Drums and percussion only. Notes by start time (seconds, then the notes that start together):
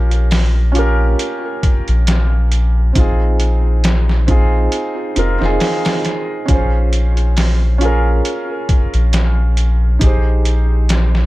0.11 closed hi-hat
0.31 snare, open hi-hat
0.75 closed hi-hat
1.19 closed hi-hat
1.63 kick, closed hi-hat
1.88 closed hi-hat
2.07 snare, closed hi-hat
2.52 closed hi-hat
2.95 kick, closed hi-hat
3.40 closed hi-hat
3.84 snare, closed hi-hat
4.09 snare
4.28 kick, closed hi-hat
4.72 closed hi-hat
5.16 closed hi-hat
5.42 snare
5.60 snare, open hi-hat
5.85 snare, open hi-hat
6.05 snare, closed hi-hat
6.48 kick, closed hi-hat
6.93 closed hi-hat
7.17 closed hi-hat
7.37 snare, open hi-hat
7.81 closed hi-hat
8.25 closed hi-hat
8.69 kick, closed hi-hat
8.94 closed hi-hat
9.13 snare, closed hi-hat
9.57 closed hi-hat
10.01 kick, closed hi-hat
10.45 closed hi-hat
10.89 snare, closed hi-hat
11.15 snare